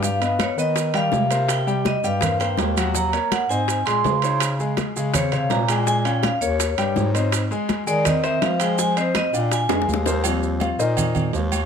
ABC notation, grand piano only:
X:1
M:4/4
L:1/8
Q:1/4=164
K:Eb
V:1 name="Grand piano"
[G,Gg] [=B,=B^d]2 [B,Bd]2 [G,Gg]2 [^A,^Ac]- | [^A,^Ac] [G,Gg]2 [G,Gg] [B,Bc] [B,Bc]2 [_G,_G_g] | [_G,_G_g] [B,B_d]2 [Cce]2 [A,Aa]2 [Ecd]- | [Ec_d] [A,Aa]2 [A,Aa] [Ccd] [C,cd]2 [A,Aa] |
[A,Aa] [_D_df]2 [B,Bd]2 [G,Gg]2 [Cce]- | [Cce] [A,Aa]2 [A,Aa] [Cce] [Cce]2 [A,Aa] | [A,Aa] [Cce]2 [Ddf]2 [A,Aa]2 [B,Bc] | z2 [Ff] [EBce]3 z2 |]
V:2 name="Grand piano" clef=bass
z8 | z8 | z8 | z8 |
z8 | z8 | z8 | [F,G,C]3 z4 z |]